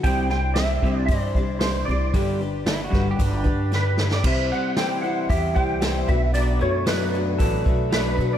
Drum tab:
CC |----------------|----------------|x---------------|----------------|
HH |o---o---o---o---|o---o---o-------|----o---o---o---|o---o---o---o---|
SD |--o-o-------o---|----o-o-----o-oo|----o-------o---|----o-------o---|
BD |o-----o-o-o-----|o-----o-o-o-----|o-------o-o---o-|--------o-o-----|